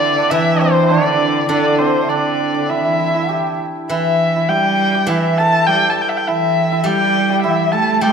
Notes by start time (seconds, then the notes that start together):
Already playing: D3 E3 C4 D4 E4 D5
0.18 D4
0.30 E3 E4 E5
0.55 D4
0.61 C4 C5
0.83 E4
0.90 D3 D4 D5
1.49 D3 D4 D5
1.79 C4 C5
2.03 E5
2.09 D3 D4 D5
2.54 D4
2.69 E3 E4 E5
2.77 E4
2.85 E4
2.93 E4
3.00 E4
3.07 E4
3.14 E4
3.29 G4 G5
3.89 E3 E4 E5
4.36 E4
4.49 G3 G4 G5
4.94 G4 G5
5.07 E3 E4 E5
5.38 A4 A5
5.67 G3 G4 G5
5.90 A5
6.01 G5
6.09 E5
6.17 G5
6.26 E3 E4 E5
6.70 E4 E5
6.84 G3 G4 G5
7.30 G4 G5
7.43 E3 E4 E5
7.51 G5
7.56 E5
7.72 A3 A4 A5
7.78 G5
7.86 A5
7.94 A5
8.01 G3 G4 G5